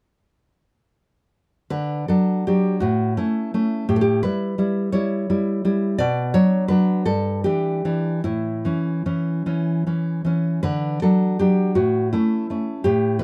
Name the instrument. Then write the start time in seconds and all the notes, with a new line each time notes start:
nylon-string guitar
1.70 D3 B4
2.08 F#3 D4 A4
2.47 F#3 D4 G4
2.80 A2 F#4
3.17 A3 C#4 E4
3.54 A3 C#4
3.89 A2 G4
3.96 A4
4.01 G4
4.23 G3 E4 B4
4.58 G3 E4
4.92 G3 E4 C#5
5.30 G3 E4
5.65 G3 E4
5.98 B2 D5
6.34 F#3 D4 C#5
6.68 F#3 D4 B4
7.06 G2 A4
7.44 E3 D4 G4
7.85 E3 D4
8.24 A2 E4
8.65 E3 C#4
9.06 E3 C#4
9.46 E3 C#4
9.87 E3 C#4
10.25 E3 C#4
10.63 D3 B4
11.02 F#3 D4 A4
11.39 F#3 D4 G4
11.75 A2 F#4
12.13 A3 C#4 E4
12.50 A3 C#4
12.84 A2 G4
13.19 G3 E4 B4